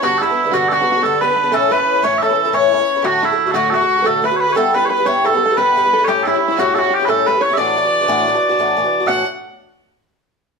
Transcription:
0.02 bouzouki G2 D3 B3 D4, fiddle F#4, five-string banjo F#4, bagpipes F#4
0.18 bouzouki G2, five-string banjo E4, fiddle E4, bagpipes A4
0.22 bouzouki D3 B3 D4, bagpipes E4
0.29 bouzouki D3 B3 D4
0.44 bouzouki D3 B3 D4
0.51 bouzouki G2 D3 B3, fiddle F#4, five-string banjo F#4, bagpipes F#4
0.55 bouzouki D4
0.68 bouzouki G2 D3, fiddle F#4, five-string banjo F#4, bagpipes A4
0.73 bouzouki B3 D4, bagpipes F#4
0.80 bouzouki D3 B3 D4, five-string banjo F#4
0.92 five-string banjo F#4
0.96 bouzouki D3 B3 D4
1.01 bouzouki G2 D3, fiddle A4, five-string banjo A4, bagpipes A4
1.05 bouzouki B3 D4
1.20 bouzouki G2 D3 B3 D4, fiddle B4, bagpipes B4, five-string banjo B4
1.29 bouzouki D3 B3 D4
1.36 five-string banjo B4
1.43 bouzouki D3 B3 D4
1.51 bouzouki A2 E3 C#4 E4, five-string banjo A4, fiddle A4, bagpipes A4
1.70 bouzouki A2 E3 C#4 E4, fiddle B4, five-string banjo B4, bagpipes B4
1.78 bouzouki E3 C#4 E4
1.95 bouzouki E3 C#4 E4
2.02 bouzouki A2 E3 C#4 E4, fiddle C#5, bagpipes C#5, five-string banjo C#5
2.18 fiddle A4, five-string banjo A4, bagpipes E5
2.22 bouzouki A2 E3 C#4 E4, bagpipes A4
2.29 bouzouki E3 C#4 E4, fiddle A4
2.41 fiddle A4
2.46 bouzouki E3 C#4 E4
2.53 bouzouki A2 E3 C#4 E4, fiddle C#5, five-string banjo C#5, bagpipes C#5
2.72 bouzouki A2 E3 C#4 E4
2.79 bouzouki E3 C#4 E4
2.96 bouzouki E3 C#4 E4
3.02 bouzouki A2 D3 A3 F#4, fiddle F#4 G4, five-string banjo F#4, bagpipes F#4
3.22 bouzouki A2 D3 A3 F#4, fiddle E4, five-string banjo E4, bagpipes E4
3.31 bouzouki D3 A3 F#4
3.46 bouzouki D3 A3 F#4
3.51 bouzouki A2 D3, five-string banjo F#4, fiddle F#4, bagpipes A4
3.55 bouzouki A3 F#4, bagpipes F#4
3.70 bouzouki A2 D3, five-string banjo F#4, bagpipes A4
3.74 bouzouki A3 F#4, bagpipes F#4, fiddle F#4
3.81 bouzouki D3 A3 F#4
3.97 bouzouki D3 A3 F#4
4.02 bouzouki A2 D3, five-string banjo A4 B4
4.06 bouzouki A3 F#4, fiddle A4, bagpipes A4
4.22 bouzouki A2 D3 A3 F#4, five-string banjo B4, fiddle B4, bagpipes B4
4.31 bouzouki D3 A3 F#4
4.36 bagpipes B4 C#5
4.41 fiddle B4
4.47 bouzouki D3 A3 F#4
4.53 bouzouki G2 G3, five-string banjo A4, bagpipes A4 C#5, fiddle A4
4.57 bouzouki B3 E4
4.73 bouzouki G2 G3 B3 E4, bagpipes B4, five-string banjo B4, fiddle B4
4.82 bouzouki G3 B3 E4, bagpipes C#5
4.90 bagpipes B4, five-string banjo B4, fiddle B4
4.97 bouzouki G3 B3 E4
5.05 bouzouki G2 G3 B3 E4, five-string banjo C#5, bagpipes C#5, fiddle C#5
5.24 bouzouki G2 G3 B3 E4, fiddle A4, five-string banjo A4, bagpipes A4
5.33 bouzouki G3 B3 E4
5.37 five-string banjo A4
5.46 bouzouki E4, five-string banjo A4
5.51 bouzouki G3 B3
5.57 bouzouki G2 G3 B3 E4, bagpipes B4, five-string banjo B4, fiddle B4
5.76 bouzouki G2 G3 B3 E4
5.83 bouzouki G3 B3 E4
5.93 five-string banjo A4
5.98 bouzouki G3 B3 E4
6.03 fiddle A4, bagpipes C#5
6.07 bouzouki A2 G3 C#4 E4, fiddle G4, bagpipes G4, five-string banjo G4
6.23 bouzouki A2 G3, fiddle E4, five-string banjo E4, bagpipes E4 A4
6.27 bouzouki C#4 E4
6.34 bouzouki G3 C#4 E4, bagpipes E4
6.46 fiddle E4, five-string banjo E4, bagpipes E4
6.51 bouzouki G3 C#4 E4
6.56 bouzouki A2 G3 C#4 E4, fiddle F#4, five-string banjo F#4, bagpipes F#4
6.74 bouzouki A2 G3 C#4 E4, five-string banjo F#4, fiddle F#4, bagpipes A4
6.78 bagpipes F#4
6.84 bouzouki G3 C#4 E4
6.90 five-string banjo G4, fiddle G4
6.94 bagpipes G4
7.00 bouzouki G3 C#4 E4
7.05 bouzouki A2 G3 C#4, fiddle A4, five-string banjo A4, bagpipes A4 B4
7.09 bouzouki E4
7.26 bouzouki A2 G3 C#4 E4, bagpipes B4, five-string banjo B4
7.34 bouzouki G3 C#4 E4
7.41 five-string banjo C#5, fiddle C#5, bagpipes C#5
7.50 bouzouki G3 C#4 E4, bagpipes E5
7.57 bouzouki A2 E3 D4 F#4, fiddle D5, five-string banjo D5, bagpipes D5
7.76 bouzouki A2 E3 D4 F#4
7.84 bouzouki E3 D4 F#4
8.00 bouzouki E3 D4 F#4
8.08 bouzouki A2 E3 D4 F#4
8.27 bouzouki A2 E3 D4 F#4
8.34 bouzouki E3 D4 F#4
8.49 bouzouki E3 D4 F#4
8.59 bouzouki A2 E3 D4 F#4
8.77 bouzouki A2 E3 D4 F#4
8.84 bouzouki E3 D4 F#4
9.00 bouzouki E3 D4 F#4
9.06 bouzouki A2 E3 D4 F#4, bagpipes F#5, five-string banjo F#5, fiddle F#5

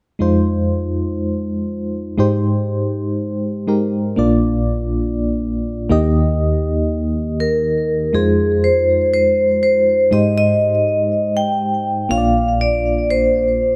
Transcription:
0.19 fm electric piano F2 G#3 D#4 F4 C5
2.18 fm electric piano G#2 G#3 D#4 G4 C5
3.67 fm electric piano G#3 D#4 G4 A#4
4.16 fm electric piano A#1 A#2 A#3 D4 F4 D5
5.89 fm electric piano D#2 D#3 A#3 D#4 G4 D#5
7.40 vibraphone A#4
8.13 fm electric piano F2 G#3 D#4 F4 C5, vibraphone G#4
8.64 vibraphone C5
9.14 vibraphone C5
9.63 vibraphone C5
10.11 fm electric piano G#2 G#3 D#4 G4 C5, vibraphone D#5
10.38 vibraphone D#5
11.37 vibraphone G5
12.09 fm electric piano A#1 A#2 A#3 D4 F4 C#5, vibraphone F5
12.18 fm electric piano D5
12.61 vibraphone D5
13.10 vibraphone C5

